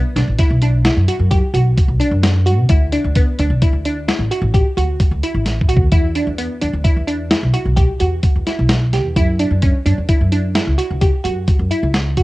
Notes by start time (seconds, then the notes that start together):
0.16 B1 D4, snare, closed hi-hat
0.28 A1
0.39 E4, kick, snare, closed hi-hat
0.50 B1
0.62 D4, closed hi-hat
0.85 E4, snare, closed hi-hat
0.97 F#2
1.08 F#4, closed hi-hat
1.19 F#2
1.31 G4, kick, closed hi-hat
1.54 B1 F#4, closed hi-hat
1.78 kick, closed hi-hat
1.88 B1
2.00 D4, closed hi-hat
2.11 F#2
2.23 snare, closed hi-hat
2.46 F#4, closed hi-hat
2.58 B2
2.69 D2 E4, kick, closed hi-hat
2.92 D4, closed hi-hat
3.04 D2
3.15 B3, kick, closed hi-hat
3.39 D2 D4, closed hi-hat
3.50 B1
3.62 E4, kick, closed hi-hat
3.73 D2
3.85 D4, closed hi-hat
4.08 E4, snare, closed hi-hat
4.19 A1
4.31 F#4, closed hi-hat
4.42 A1
4.54 G4, kick, closed hi-hat
4.77 D2 F#4, closed hi-hat
5.00 kick, closed hi-hat
5.11 D2
5.23 E4, closed hi-hat
5.34 A1
5.46 snare, closed hi-hat
5.61 kick
5.69 F#4, closed hi-hat
5.77 D#2, kick
5.92 E2 E4, kick, closed hi-hat
6.15 D4, closed hi-hat
6.27 E2
6.38 B3, closed hi-hat
6.61 E2 D4, closed hi-hat
6.73 D2
6.84 E4, kick, closed hi-hat
6.96 E2
7.07 D4, closed hi-hat
7.31 E4, snare, closed hi-hat
7.43 B1
7.54 F#4, closed hi-hat
7.65 B1
7.76 G4, kick, closed hi-hat
8.00 E2 F#4, closed hi-hat
8.23 kick, closed hi-hat
8.36 E2
8.47 E4, snare, closed hi-hat
8.59 B1
8.69 snare, closed hi-hat
8.93 G4, snare, closed hi-hat
9.04 E2
9.16 F#2 E4, kick, closed hi-hat
9.39 D4, closed hi-hat
9.51 F#2
9.62 C#4, kick, closed hi-hat
9.86 F#2 D4, closed hi-hat
9.98 E2
10.09 E4, kick, closed hi-hat
10.21 F#2
10.32 D4, closed hi-hat
10.55 E4, snare, closed hi-hat
10.67 C#2
10.78 F#4, closed hi-hat
10.91 C#2
11.01 G4, kick, closed hi-hat
11.24 F#2 F#4, closed hi-hat
11.48 kick, closed hi-hat
11.59 F#2
11.71 E4, closed hi-hat
11.83 C#2
11.94 snare, closed hi-hat
12.17 F#4, kick, closed hi-hat